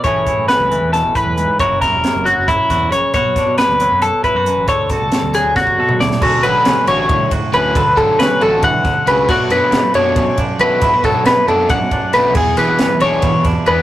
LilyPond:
<<
  \new Staff \with { instrumentName = "Clean electric guitar" } { \time 7/8 \key d \lydian \tempo 4 = 137 cis''4 b'4 a'8 b'4 | cis''8 ais'4 fis'8 e'4 cis''8 | cis''4 b'4 a'8 b'4 | cis''8 a'4 gis'8 fis'4 d''8 |
fis'8 b'4 cis''4 r8 b'8~ | b'8 a'8 b'8 a'8 fis''4 b'8 | fis'8 b'4 cis''4 r8 b'8~ | b'8 a'8 b'8 a'8 fis''4 b'8 |
gis'8 b'4 cis''4 r8 b'8 | }
  \new Staff \with { instrumentName = "Overdriven electric guitar" } { \time 7/8 \key d \lydian r2. r8 | r2. r8 | r2. r8 | r2. r8 |
r8 <fis a d' fis'>8 r8 <fis a d' fis'>8 r4 <fis a d' fis'>8 | r8 <fis a d' fis'>8 r8 <fis a d' fis'>8 r4 <fis a d' fis'>8 | r8 <fis b d' fis'>8 r8 <fis b d' fis'>8 r4 <fis b d' fis'>8 | r8 <fis b d' fis'>8 r8 <fis b d' fis'>8 r4 <fis b d' fis'>8 |
r8 <e b d' gis'>8 r8 <e b d' gis'>8 r4 <e b d' gis'>8 | }
  \new Staff \with { instrumentName = "Clean electric guitar" } { \time 7/8 \key d \lydian << { <e cis' e' gis'>8 e'2. | <fis ais e' fis'>8 e'2 fis'4 | fis'8 d'2 e'16 fis'8. | a'8 fis'2 a'4 |
<fis cis' fis' a'>4 cis'8 fis'4 fis'8 cis'8 | a'4 cis'8 fis'2 | <fis a d' fis'>4 a8 d'4 d'8 a8 | e'16 fis'8. a8 d'4 d'8 a8 |
gis'4 b8 d'4 d'8 b8 | } \\ { a,4. e8 b,8 a,8 gis,8 | fis,4. fis4. cis8 | b,4. fis4. fis,8 | d4. fis4. a,8 |
d8 fis4. a,4. | d8 fis4. e8 d8 cis8 | b,8 fis4. fis,4. | b,8 fis4. fis,4. |
e,8 e4. b,4. | } >> }
  \new Staff \with { instrumentName = "Fingered electric bass" } { \clef bass \time 7/8 \key d \lydian a,,8 r16 a,16 r16 cis,8 e,8 a,,16 r16 e,8 a,16 | fis,,8. e,,16 r16 fis,,8 fis,,8 r16 e,8 ais,,16 r16 | b,,8 r16 b,16 r16 d,8 fis,8 b,,16 r16 fis,8 a,,16 | d,8. cis,16 r16 d,8 d,8 r16 b,8 d,16 r16 |
d,8 a,,16 r16 d16 r16 a,,8 d8 d,16 r16 d,8 | d,8 a,,16 r16 d16 r16 a,,8 d8 d,16 r16 cis,8 | b,,8 fis,16 r16 b,16 r16 fis,8 b,8 b,,16 r16 b,,8 | b,,8 fis,16 r16 b,16 r16 fis,8 b,8 b,,16 r16 b,,8 |
e,8 b,,16 r16 e16 r16 b,,8 e8 e,16 r16 e,8 | }
  \new DrumStaff \with { instrumentName = "Drums" } \drummode { \time 7/8 <hh bd>8 <hh bd>8 <hh sn>8 hh8 <hh sn>8 <hh bd>8 hh8 | <hh bd>8 <hh bd sn>8 <hh sn>8 hh8 <hh bd>8 <hh bd sn>8 hh8 | <hh bd>8 <hh bd sn>8 <hh sn>8 hh8 hh8 <hh bd>8 hh8 | <hh bd>8 <hh bd sn>8 <hh sn>8 <hh sn>8 <bd sn>16 bd8 toml16 sn16 sn16 |
<cymc bd>8 cymr8 <cymr sn>8 cymr8 <bd cymr>8 <bd cymr>8 cymr8 | <bd cymr>8 <bd cymr>8 <cymr sn>8 cymr8 <bd cymr>8 <bd cymr sn>8 cymr8 | <cymc bd>8 cymr8 <cymr sn>8 cymr8 <bd cymr>8 <bd cymr>8 cymr8 | <bd cymr>8 <bd cymr sn>8 <cymr sn>8 cymr8 <bd cymr>8 <bd cymr>8 <cymr sn>8 |
<cymc bd>8 <cymr sn>8 <cymr sn>8 cymr8 <bd cymr>8 <bd cymr sn>8 cymr8 | }
>>